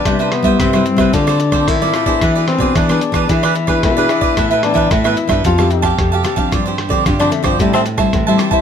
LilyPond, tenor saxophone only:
\new Staff \with { instrumentName = "Tenor saxophone" } { \time 4/4 \key a \minor \tempo 4 = 112 d'8 b8 c'4 d'4 e'4~ | e'8 c'8 d'4 e'4 e'4~ | e'8 d'8 e'4 f'4 r4 | r4 r16 d'16 a16 f16 g16 c'16 r4 r16 e'16 | }